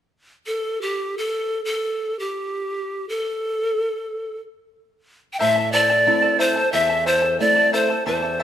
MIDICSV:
0, 0, Header, 1, 4, 480
1, 0, Start_track
1, 0, Key_signature, 0, "minor"
1, 0, Tempo, 500000
1, 8093, End_track
2, 0, Start_track
2, 0, Title_t, "Pan flute"
2, 0, Program_c, 0, 75
2, 449, Note_on_c, 0, 69, 71
2, 784, Note_on_c, 0, 67, 67
2, 798, Note_off_c, 0, 69, 0
2, 1131, Note_on_c, 0, 69, 75
2, 1146, Note_off_c, 0, 67, 0
2, 1566, Note_off_c, 0, 69, 0
2, 1585, Note_on_c, 0, 69, 78
2, 2107, Note_on_c, 0, 67, 74
2, 2121, Note_off_c, 0, 69, 0
2, 2958, Note_off_c, 0, 67, 0
2, 2967, Note_on_c, 0, 69, 78
2, 4225, Note_off_c, 0, 69, 0
2, 5119, Note_on_c, 0, 79, 63
2, 5183, Note_on_c, 0, 76, 92
2, 5198, Note_off_c, 0, 79, 0
2, 5495, Note_on_c, 0, 74, 101
2, 5509, Note_off_c, 0, 76, 0
2, 6144, Note_on_c, 0, 72, 83
2, 6158, Note_off_c, 0, 74, 0
2, 6452, Note_off_c, 0, 72, 0
2, 6458, Note_on_c, 0, 76, 82
2, 6786, Note_on_c, 0, 72, 82
2, 6801, Note_off_c, 0, 76, 0
2, 7102, Note_off_c, 0, 72, 0
2, 7108, Note_on_c, 0, 74, 77
2, 7427, Note_on_c, 0, 72, 78
2, 7442, Note_off_c, 0, 74, 0
2, 7741, Note_off_c, 0, 72, 0
2, 7747, Note_on_c, 0, 72, 87
2, 8093, Note_off_c, 0, 72, 0
2, 8093, End_track
3, 0, Start_track
3, 0, Title_t, "Charango"
3, 0, Program_c, 1, 24
3, 5177, Note_on_c, 1, 72, 71
3, 5179, Note_on_c, 1, 76, 72
3, 5186, Note_on_c, 1, 64, 67
3, 5187, Note_on_c, 1, 69, 75
3, 5190, Note_on_c, 1, 81, 80
3, 5323, Note_off_c, 1, 81, 0
3, 5333, Note_off_c, 1, 69, 0
3, 5335, Note_on_c, 1, 81, 44
3, 5340, Note_off_c, 1, 64, 0
3, 5341, Note_off_c, 1, 72, 0
3, 5342, Note_off_c, 1, 76, 0
3, 5345, Note_on_c, 1, 69, 40
3, 5351, Note_on_c, 1, 64, 41
3, 5495, Note_off_c, 1, 64, 0
3, 5500, Note_off_c, 1, 81, 0
3, 5501, Note_off_c, 1, 69, 0
3, 5505, Note_on_c, 1, 72, 70
3, 5506, Note_on_c, 1, 64, 78
3, 5506, Note_on_c, 1, 76, 73
3, 5512, Note_on_c, 1, 69, 71
3, 5514, Note_on_c, 1, 81, 78
3, 5650, Note_off_c, 1, 81, 0
3, 5657, Note_off_c, 1, 69, 0
3, 5662, Note_on_c, 1, 81, 49
3, 5665, Note_off_c, 1, 64, 0
3, 5665, Note_off_c, 1, 72, 0
3, 5665, Note_off_c, 1, 76, 0
3, 5668, Note_on_c, 1, 69, 42
3, 5677, Note_on_c, 1, 64, 39
3, 5815, Note_off_c, 1, 64, 0
3, 5818, Note_off_c, 1, 69, 0
3, 5820, Note_off_c, 1, 81, 0
3, 5822, Note_on_c, 1, 76, 51
3, 5826, Note_on_c, 1, 64, 56
3, 5830, Note_on_c, 1, 69, 55
3, 5832, Note_on_c, 1, 81, 53
3, 5964, Note_off_c, 1, 81, 0
3, 5970, Note_off_c, 1, 69, 0
3, 5975, Note_on_c, 1, 81, 47
3, 5977, Note_off_c, 1, 64, 0
3, 5981, Note_on_c, 1, 69, 45
3, 5983, Note_off_c, 1, 76, 0
3, 5989, Note_on_c, 1, 64, 39
3, 6124, Note_off_c, 1, 64, 0
3, 6131, Note_off_c, 1, 69, 0
3, 6131, Note_off_c, 1, 81, 0
3, 6132, Note_on_c, 1, 72, 73
3, 6135, Note_on_c, 1, 64, 72
3, 6135, Note_on_c, 1, 76, 65
3, 6142, Note_on_c, 1, 69, 70
3, 6142, Note_on_c, 1, 81, 78
3, 6284, Note_off_c, 1, 81, 0
3, 6294, Note_off_c, 1, 69, 0
3, 6296, Note_on_c, 1, 81, 54
3, 6297, Note_off_c, 1, 72, 0
3, 6299, Note_off_c, 1, 64, 0
3, 6299, Note_off_c, 1, 76, 0
3, 6306, Note_on_c, 1, 69, 46
3, 6310, Note_on_c, 1, 64, 40
3, 6448, Note_off_c, 1, 64, 0
3, 6454, Note_off_c, 1, 69, 0
3, 6459, Note_off_c, 1, 81, 0
3, 6459, Note_on_c, 1, 72, 70
3, 6460, Note_on_c, 1, 64, 73
3, 6460, Note_on_c, 1, 76, 68
3, 6465, Note_on_c, 1, 69, 71
3, 6469, Note_on_c, 1, 81, 78
3, 6609, Note_off_c, 1, 81, 0
3, 6614, Note_off_c, 1, 69, 0
3, 6620, Note_off_c, 1, 64, 0
3, 6620, Note_off_c, 1, 72, 0
3, 6620, Note_off_c, 1, 76, 0
3, 6621, Note_on_c, 1, 81, 49
3, 6625, Note_on_c, 1, 69, 41
3, 6636, Note_on_c, 1, 64, 39
3, 6767, Note_off_c, 1, 64, 0
3, 6772, Note_off_c, 1, 81, 0
3, 6774, Note_off_c, 1, 69, 0
3, 6779, Note_on_c, 1, 64, 78
3, 6779, Note_on_c, 1, 72, 68
3, 6779, Note_on_c, 1, 76, 77
3, 6784, Note_on_c, 1, 81, 77
3, 6785, Note_on_c, 1, 69, 79
3, 6920, Note_off_c, 1, 81, 0
3, 6929, Note_off_c, 1, 69, 0
3, 6932, Note_on_c, 1, 81, 44
3, 6936, Note_off_c, 1, 64, 0
3, 6939, Note_off_c, 1, 72, 0
3, 6939, Note_off_c, 1, 76, 0
3, 6941, Note_on_c, 1, 69, 48
3, 6948, Note_on_c, 1, 64, 36
3, 7091, Note_off_c, 1, 64, 0
3, 7095, Note_off_c, 1, 81, 0
3, 7096, Note_off_c, 1, 69, 0
3, 7096, Note_on_c, 1, 76, 51
3, 7102, Note_on_c, 1, 64, 51
3, 7108, Note_on_c, 1, 69, 54
3, 7109, Note_on_c, 1, 81, 58
3, 7248, Note_off_c, 1, 81, 0
3, 7257, Note_off_c, 1, 76, 0
3, 7259, Note_off_c, 1, 69, 0
3, 7259, Note_on_c, 1, 81, 45
3, 7260, Note_off_c, 1, 64, 0
3, 7270, Note_on_c, 1, 69, 46
3, 7275, Note_on_c, 1, 64, 35
3, 7413, Note_off_c, 1, 64, 0
3, 7417, Note_off_c, 1, 69, 0
3, 7418, Note_off_c, 1, 81, 0
3, 7421, Note_on_c, 1, 72, 72
3, 7421, Note_on_c, 1, 76, 72
3, 7424, Note_on_c, 1, 64, 63
3, 7428, Note_on_c, 1, 81, 73
3, 7429, Note_on_c, 1, 69, 76
3, 7571, Note_off_c, 1, 81, 0
3, 7578, Note_off_c, 1, 69, 0
3, 7579, Note_off_c, 1, 72, 0
3, 7579, Note_off_c, 1, 76, 0
3, 7580, Note_off_c, 1, 64, 0
3, 7582, Note_on_c, 1, 81, 48
3, 7589, Note_on_c, 1, 69, 49
3, 7593, Note_on_c, 1, 64, 40
3, 7729, Note_off_c, 1, 64, 0
3, 7733, Note_off_c, 1, 69, 0
3, 7734, Note_on_c, 1, 72, 66
3, 7735, Note_off_c, 1, 81, 0
3, 7740, Note_on_c, 1, 76, 69
3, 7741, Note_on_c, 1, 64, 78
3, 7744, Note_on_c, 1, 69, 75
3, 7746, Note_on_c, 1, 81, 68
3, 7882, Note_off_c, 1, 81, 0
3, 7891, Note_off_c, 1, 69, 0
3, 7894, Note_off_c, 1, 72, 0
3, 7894, Note_on_c, 1, 81, 45
3, 7897, Note_off_c, 1, 76, 0
3, 7898, Note_off_c, 1, 64, 0
3, 7903, Note_on_c, 1, 69, 44
3, 7910, Note_on_c, 1, 64, 38
3, 8051, Note_off_c, 1, 64, 0
3, 8053, Note_off_c, 1, 69, 0
3, 8054, Note_off_c, 1, 81, 0
3, 8058, Note_on_c, 1, 72, 62
3, 8060, Note_on_c, 1, 76, 71
3, 8062, Note_on_c, 1, 64, 70
3, 8093, Note_off_c, 1, 64, 0
3, 8093, Note_off_c, 1, 72, 0
3, 8093, Note_off_c, 1, 76, 0
3, 8093, End_track
4, 0, Start_track
4, 0, Title_t, "Nylon-string guitar"
4, 0, Program_c, 2, 24
4, 5195, Note_on_c, 2, 45, 59
4, 5810, Note_off_c, 2, 45, 0
4, 5823, Note_on_c, 2, 57, 46
4, 5826, Note_on_c, 2, 60, 43
4, 5832, Note_on_c, 2, 64, 49
4, 6334, Note_off_c, 2, 57, 0
4, 6336, Note_off_c, 2, 60, 0
4, 6338, Note_off_c, 2, 64, 0
4, 6466, Note_on_c, 2, 40, 61
4, 7082, Note_off_c, 2, 40, 0
4, 7109, Note_on_c, 2, 57, 46
4, 7113, Note_on_c, 2, 60, 41
4, 7115, Note_on_c, 2, 64, 53
4, 7615, Note_off_c, 2, 57, 0
4, 7618, Note_off_c, 2, 60, 0
4, 7618, Note_off_c, 2, 64, 0
4, 7742, Note_on_c, 2, 40, 65
4, 8093, Note_off_c, 2, 40, 0
4, 8093, End_track
0, 0, End_of_file